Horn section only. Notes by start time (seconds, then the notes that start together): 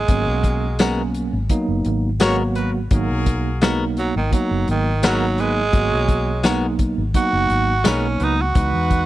0.09 A#3 F#4 G#4 A#4
2.22 C#4 F#4 A#4 C#5
2.55 B3 F#4 A#4 B4
2.92 A#3 F#4 G#4 A#4
5.03 B3 F#4 A#4 B4
5.37 B3 F#4 A#4 B4
5.73 C#4 F#4 A#4 C#5
7.84 B3 F#4 A#4 B4
8.20 B3 F#4 A#4 B4
8.54 B3 D#4 B4